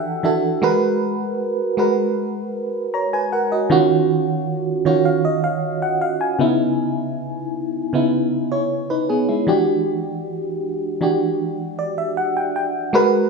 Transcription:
Already playing: E3 D4 F#4 A4 E5 F#5 G5
0.23 E3 D4 F#4 A4 E5
0.62 G#3 F#4 A#4 B4
1.77 G#3 F#4 A#4 B4
2.94 C#5 A#5
3.13 B4 G#5
3.32 A#4 F#5
3.52 F#4 D#5
3.70 D#3 C#4 F4 F#4
4.85 D#3 C#4 F4 F#4 C#5
5.05 F5
5.25 D#5
5.44 F5
5.82 F#5
6.01 F5
6.21 G#5
6.39 C#3 B3 D#4 E4
7.93 C#3 B3 D#4 E4
8.52 E4 C#5
8.90 D#4 B4
9.09 B3 G#4
9.29 G#3 E4
9.47 E3 D4 F#4 G4
11.01 E3 D4 F#4 G4
11.79 D5
11.98 E5
12.17 F#5
12.37 G5
12.56 G5
12.93 G#3 F#4 A#4 B4

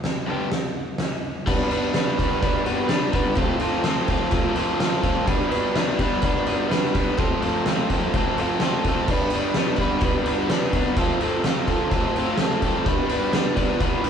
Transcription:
0.04 snare, open hi-hat
0.27 G2 D3 G3 B3 D4
0.31 G4
0.52 snare, open hi-hat
0.98 snare, open hi-hat
1.46 G3 B3 D4 B4, kick, crash
1.70 G3 B3 D4 B4, ride
1.93 G3 B3 D4 B4, snare, ride
2.18 G3 B3 D4 B4, kick, ride
2.42 G3 B3 D4 B4, kick, ride
2.65 G3 B3 D4 B4, ride
2.88 G3 B3 D4 B4, snare, ride
3.12 G3 B3 D4 B4, kick, ride
3.35 F3 A3 C4 F4, kick, ride
3.39 A4
3.59 F3 A3 C4 F4 A4, ride
3.84 F3 A3 C4 F4 A4, snare, ride
4.08 F3 A3 C4 F4 A4, kick, ride
4.31 F3 A3 C4 F4 A4, kick, ride
4.55 F3 A3 C4 F4 A4, ride
4.77 F3 A3 C4 F4 A4, snare, ride
5.02 F3 A3 C4 F4 A4, kick, ride
5.27 G3 B3 D4 B4, kick, ride
5.49 G3 B3 D4 B4, ride
5.75 G3 B3 D4 B4, snare, ride
5.99 G3 B3 D4 B4, kick, ride
6.22 G3 B3 D4 B4, kick, ride
6.46 G3 B3 D4 B4, ride
6.69 G3 B3 D4 B4, snare, ride
6.93 G3 B3 D4 B4, kick, ride
7.16 F3 A3 C4 F4 A4, kick, ride
7.41 F3 A3 C4 F4 A4, ride
7.66 F3 A3 C4 F4 A4, snare, ride
7.89 F3 A3 C4 F4 A4, kick, ride
8.14 F3 A3 C4 F4 A4, kick, ride
8.37 F3 A3 C4 F4, ride
8.41 A4
8.60 F3 A3 C4 F4, snare, ride
8.64 A4
8.84 F3 A3 C4 F4, kick, ride
8.89 A4
9.08 G3 D4, kick, crash
9.12 B3 B4
9.30 G3 D4, ride
9.35 B3 B4
9.54 G3 B3 D4, snare, ride
9.59 B4
9.76 G3, kick, ride
9.80 B3 D4 B4
10.01 G3 D4, kick, ride
10.05 B3 B4
10.25 G3 B3 D4 B4, ride
10.50 G3 B3 D4 B4, snare, ride
10.72 G3 B3 D4 B4, kick, ride
10.96 F3 A3 C4 F4 A4, kick, ride
11.20 F3 A3 C4 F4 A4, ride
11.44 F3 A3 C4 F4 A4, snare, ride
11.66 F3 A3 C4 F4 A4, kick, ride
11.91 F3 A3 C4 F4 A4, kick, ride
12.16 F3 A3 C4 F4 A4, ride
12.37 F3 A3 C4 F4, snare, ride
12.42 A4
12.62 F3 A3 C4 F4 A4, kick, ride
12.86 G3 B3 D4 B4, kick, ride
13.09 G3 B3 D4 B4, ride
13.33 G3 B3 D4 B4, snare, ride
13.56 G3 B3 D4 B4, kick, ride
13.79 G3 B3 D4 B4, kick, ride
14.04 G3 B3 D4 B4, ride

